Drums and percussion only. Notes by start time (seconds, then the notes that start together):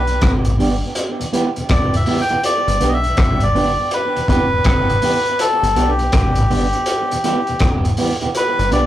0.07 closed hi-hat
0.21 kick, cross-stick, closed hi-hat
0.45 closed hi-hat
0.60 open hi-hat
0.95 closed hi-hat
1.21 closed hi-hat
1.33 closed hi-hat
1.56 closed hi-hat
1.69 kick, cross-stick, closed hi-hat
1.94 closed hi-hat
2.06 open hi-hat
2.30 closed hi-hat
2.44 closed hi-hat
2.68 closed hi-hat
2.81 closed hi-hat
3.04 closed hi-hat
3.17 kick, cross-stick, closed hi-hat
3.40 closed hi-hat
3.56 open hi-hat
3.91 closed hi-hat
4.16 closed hi-hat
4.28 kick, closed hi-hat
4.64 kick, cross-stick, closed hi-hat
4.90 closed hi-hat
5.02 open hi-hat
5.25 closed hi-hat
5.39 closed hi-hat
5.63 closed hi-hat
5.76 closed hi-hat
5.99 closed hi-hat
6.12 kick, cross-stick, closed hi-hat
6.35 closed hi-hat
6.51 open hi-hat
6.73 closed hi-hat
6.86 closed hi-hat
7.11 closed hi-hat
7.24 closed hi-hat
7.47 closed hi-hat
7.59 kick, cross-stick, closed hi-hat
7.85 closed hi-hat
7.97 open hi-hat
8.21 closed hi-hat
8.35 closed hi-hat
8.59 closed hi-hat
8.72 closed hi-hat